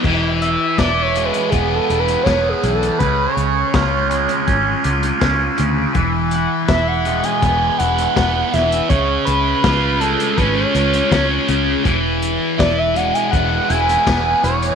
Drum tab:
CC |x---------------|----------------|----------------|----------------|
HH |--x-x-xxx-xxx-xx|x-x-x-xxx-xxx-x-|x-x-x-xxx-xxx-xx|x-x-x-xxx-xxx-x-|
SD |----o-------o---|----o-------o---|----o-------o-o-|----o-------o---|
BD |o---o---o---o---|o---o---o---o---|o---o---o---o---|o---o---o---o---|

CC |----------------|
HH |x-x-x-xxx-xxx-xx|
SD |----o-------o---|
BD |o---o---o---o---|